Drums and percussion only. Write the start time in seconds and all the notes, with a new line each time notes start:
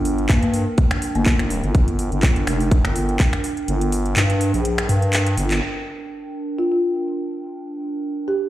0.05 open hi-hat
0.18 closed hi-hat
0.29 kick, clap, closed hi-hat
0.43 closed hi-hat
0.54 open hi-hat
0.78 kick, closed hi-hat
0.91 finger snap, closed hi-hat
1.02 open hi-hat
1.15 closed hi-hat
1.26 kick, clap, closed hi-hat
1.39 finger snap, closed hi-hat
1.50 open hi-hat
1.64 closed hi-hat
1.75 kick, closed hi-hat
1.88 closed hi-hat
1.99 open hi-hat
2.12 closed hi-hat
2.23 kick, clap, closed hi-hat
2.36 closed hi-hat
2.47 finger snap, open hi-hat
2.60 open hi-hat
2.71 kick, closed hi-hat
2.85 finger snap, closed hi-hat
2.96 open hi-hat
3.09 closed hi-hat
3.20 kick, clap, closed hi-hat
3.33 finger snap, closed hi-hat
3.44 open hi-hat
3.57 closed hi-hat
3.68 closed hi-hat
3.81 closed hi-hat
3.92 open hi-hat
4.06 closed hi-hat
4.16 clap, closed hi-hat
4.30 closed hi-hat
4.41 open hi-hat
4.54 open hi-hat
4.65 closed hi-hat
4.78 finger snap, closed hi-hat
4.89 open hi-hat
5.02 closed hi-hat
5.13 clap, closed hi-hat
5.26 closed hi-hat
5.37 open hi-hat
5.51 clap, open hi-hat